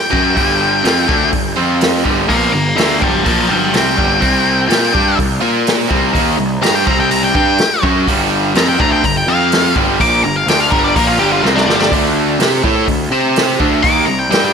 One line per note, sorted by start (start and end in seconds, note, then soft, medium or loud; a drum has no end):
0.00 1.30 G5 loud
0.10 0.35 F#2 loud
0.10 0.35 F#3 medium
0.10 0.35 C#4 loud
0.10 0.36 F#4 loud
0.10 kick loud
0.35 0.82 G1 medium
0.35 0.83 G2 medium
0.35 0.84 D3 loud
0.35 0.83 G3 medium
0.35 kick medium
0.35 open hi-hat medium
0.84 1.07 F2 medium
0.84 1.07 F3 medium
0.84 1.08 C4 medium
0.84 1.08 F4 loud
0.84 snare loud
0.84 open hi-hat medium
1.07 1.32 D2 medium
1.07 1.31 D3 medium
1.07 1.32 A3 medium
1.07 1.32 D4 medium
1.07 kick loud
1.32 1.56 G1 medium
1.32 1.52 G2 medium
1.32 1.52 D3 medium
1.32 kick medium
1.32 open hi-hat medium
1.56 2.02 F2 medium
1.56 2.04 F3 medium
1.56 2.04 C4 loud
1.56 2.05 F4 loud
1.81 snare loud
1.81 open hi-hat medium
2.04 2.28 G1 loud
2.04 2.28 G2 medium
2.04 2.27 D3 loud
2.04 2.28 G3 medium
2.04 kick medium
2.28 2.52 A#1 medium
2.28 2.52 A#2 medium
2.28 2.53 F3 loud
2.28 2.53 A#3 loud
2.28 2.52 A#5 medium
2.28 2.53 D6 loud
2.28 kick medium
2.28 open hi-hat medium
2.52 2.76 G1 medium
2.52 2.72 G2 medium
2.52 2.72 D3 medium
2.52 2.76 A#5 medium
2.52 2.77 D6 medium
2.75 3.01 D2 medium
2.75 2.99 D3 medium
2.75 3.00 A3 loud
2.75 3.01 D4 medium
2.75 3.00 A#5 medium
2.75 3.02 D6 medium
2.75 snare loud
2.75 open hi-hat medium
3.00 3.24 G1 medium
3.00 3.24 G2 medium
3.00 3.24 D3 medium
3.00 3.24 G3 medium
3.00 3.25 F5 medium
3.00 kick loud
3.04 3.26 A5 medium
3.24 3.49 A#1 medium
3.24 3.48 A#2 medium
3.24 3.49 F3 medium
3.24 3.49 A#3 medium
3.24 3.49 F5 medium
3.24 kick loud
3.24 open hi-hat medium
3.28 3.51 A5 medium
3.49 3.73 G1 medium
3.49 3.73 G2 medium
3.49 3.73 D3 loud
3.49 3.73 G3 loud
3.49 3.73 F5 medium
3.53 3.75 A5 medium
3.73 3.97 C2 medium
3.73 3.97 C3 medium
3.73 3.97 G3 medium
3.73 3.98 C4 loud
3.73 5.16 G5 loud
3.73 snare loud
3.73 open hi-hat medium
3.97 4.21 G1 medium
3.97 4.21 G2 medium
3.97 4.20 D3 loud
3.97 4.20 G3 medium
3.97 kick loud
4.20 4.67 C2 medium
4.20 4.69 C3 medium
4.20 4.68 G3 medium
4.20 4.68 C4 loud
4.20 kick medium
4.20 open hi-hat soft
4.68 4.93 A#2 medium
4.68 4.92 A#3 medium
4.68 4.93 F4 loud
4.68 4.93 A#4 loud
4.68 snare loud
4.68 open hi-hat medium
4.92 5.17 G2 medium
4.92 5.16 G3 medium
4.92 5.17 D4 medium
4.92 5.17 G4 medium
4.92 kick loud
5.17 5.41 C2 medium
5.17 5.37 C3 medium
5.17 5.37 G3 medium
5.17 kick medium
5.17 open hi-hat medium
5.40 5.87 A#2 medium
5.40 5.89 A#3 medium
5.40 5.89 F4 loud
5.40 5.90 A#4 loud
5.67 snare loud
5.67 open hi-hat medium
5.89 6.13 C2 loud
5.89 6.12 C3 medium
5.89 6.13 G3 loud
5.89 6.13 C4 medium
5.89 kick loud
6.13 6.37 D#2 medium
6.13 6.37 D#3 loud
6.13 6.37 A#3 loud
6.13 6.38 D#4 medium
6.13 kick medium
6.13 open hi-hat medium
6.37 6.61 C2 medium
6.37 6.57 C3 medium
6.37 6.58 G3 medium
6.62 6.85 G2 loud
6.62 6.86 G3 medium
6.62 6.86 D4 loud
6.62 6.86 G4 loud
6.62 6.75 A#5 loud
6.62 snare loud
6.62 open hi-hat medium
6.75 6.87 G5 medium
6.86 7.32 C2 medium
6.86 7.34 C3 medium
6.86 7.33 G3 medium
6.86 7.35 C4 medium
6.86 6.99 A#5 loud
6.86 kick loud
7.00 7.11 G5 medium
7.11 7.23 A#5 medium
7.11 open hi-hat medium
7.24 7.35 G5 medium
7.35 7.57 G2 medium
7.35 7.58 G3 medium
7.35 7.59 D4 loud
7.35 7.59 G4 loud
7.35 7.82 G5 loud
7.35 kick loud
7.58 muted picked electric bass stroke soft
7.58 muted overdriven electric guitar stroke medium
7.58 snare loud
7.58 open hi-hat medium
7.83 8.06 F#2 loud
7.83 8.06 F#3 loud
7.83 8.06 C#4 loud
7.83 8.06 F#4 loud
7.83 kick loud
8.07 8.52 G1 medium
8.07 8.55 G2 medium
8.07 8.55 D3 loud
8.07 8.55 G3 loud
8.07 kick medium
8.07 open hi-hat medium
8.55 8.77 F2 medium
8.55 8.78 F3 loud
8.55 8.78 C4 loud
8.55 8.78 F4 medium
8.55 8.68 A#5 loud
8.55 snare loud
8.55 open hi-hat medium
8.69 8.80 G5 medium
8.78 9.02 D2 loud
8.78 9.02 D3 medium
8.78 9.02 A3 loud
8.78 9.02 D4 medium
8.78 8.91 A#5 loud
8.78 kick loud
8.92 9.05 G5 medium
9.04 9.26 G1 medium
9.04 9.23 G2 medium
9.04 9.23 D3 medium
9.04 9.16 A#5 medium
9.04 kick medium
9.04 open hi-hat medium
9.17 9.28 G5 loud
9.27 9.72 F2 loud
9.27 9.75 F3 loud
9.27 9.75 C4 loud
9.27 9.75 F4 loud
9.27 9.74 F5 loud
9.52 snare loud
9.52 open hi-hat medium
9.76 9.98 G1 loud
9.76 9.99 G2 medium
9.76 9.99 D3 loud
9.76 10.00 G3 loud
9.76 kick loud
9.99 10.22 A#1 loud
9.99 10.23 A#2 medium
9.99 10.23 F3 loud
9.99 10.23 A#3 loud
9.99 10.23 D6 loud
9.99 kick medium
9.99 open hi-hat medium
10.22 10.45 G1 medium
10.22 10.43 G2 soft
10.22 10.43 D3 medium
10.22 10.35 A#5 loud
10.36 10.49 F5 medium
10.46 10.69 D2 loud
10.46 10.71 D3 medium
10.46 10.72 A3 loud
10.46 10.72 D4 medium
10.46 10.60 G5 medium
10.46 snare loud
10.46 open hi-hat medium
10.60 10.71 F5 loud
10.71 10.94 G1 loud
10.71 10.95 G2 medium
10.71 10.95 D3 medium
10.71 10.95 G3 medium
10.71 10.83 A#4 loud
10.71 kick loud
10.84 10.95 D5 medium
10.96 11.18 A#1 medium
10.96 11.19 A#2 medium
10.96 11.19 F3 medium
10.96 11.19 A#3 medium
10.96 11.07 A#4 medium
10.96 kick loud
10.96 open hi-hat medium
11.07 11.19 F4 medium
11.18 11.41 G1 loud
11.18 11.42 G2 medium
11.18 11.43 D3 medium
11.18 11.42 G3 loud
11.18 11.31 G4 medium
11.32 11.43 F4 medium
11.42 11.65 C2 medium
11.42 11.66 C3 loud
11.42 11.66 G3 medium
11.42 11.67 C4 loud
11.42 snare medium
11.56 11.65 D4 medium
11.56 snare medium
11.66 11.89 G1 medium
11.66 11.90 G2 medium
11.66 11.90 D3 loud
11.66 11.91 G3 loud
11.66 11.90 D4 loud
11.66 snare medium
11.81 snare medium
11.91 12.36 D2 medium
11.91 12.39 D3 loud
11.91 12.39 A3 loud
11.91 12.39 D4 medium
11.91 kick loud
11.91 open hi-hat medium
12.39 12.62 C3 loud
12.39 12.63 C4 medium
12.39 12.63 G4 medium
12.39 12.63 C5 loud
12.39 snare loud
12.39 open hi-hat medium
12.63 12.86 A2 loud
12.63 12.86 A3 medium
12.63 12.87 E4 medium
12.63 12.87 A4 medium
12.63 kick loud
12.86 13.10 D2 medium
12.86 13.06 D3 medium
12.86 13.06 A3 medium
12.86 kick medium
12.86 open hi-hat medium
13.10 13.55 C3 medium
13.10 13.59 C4 medium
13.10 13.59 G4 loud
13.10 13.59 C5 loud
13.36 snare loud
13.36 open hi-hat medium
13.59 13.82 D2 loud
13.59 13.82 D3 medium
13.59 13.83 A3 medium
13.59 13.83 D4 loud
13.59 kick loud
13.83 14.06 D#2 medium
13.83 14.06 D#3 medium
13.83 14.07 A#3 loud
13.83 14.07 D#4 loud
13.83 14.06 D6 loud
13.83 kick loud
13.83 open hi-hat medium
14.06 14.29 C2 medium
14.06 14.26 C3 medium
14.06 14.26 G3 medium
14.06 14.19 A#5 medium
14.19 14.30 G5 medium
14.31 14.53 G2 loud
14.31 14.53 G3 medium
14.31 14.53 D4 medium
14.31 14.53 G4 loud
14.31 14.43 G5 medium
14.31 snare loud
14.31 open hi-hat medium
14.45 14.53 G5 loud